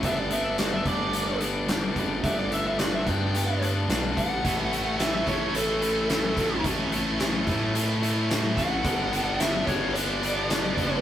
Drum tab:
HH |xxxxxxxx|xxxxxxxx|xxxxxxxx|xxxxxxxx|
SD |--o---o-|--o---o-|--o---oo|--o---o-|
BD |o--o---o|o--o---o|o--o---o|o--o---o|

HH |xxxxxxxx|
SD |--o---o-|
BD |o--o---o|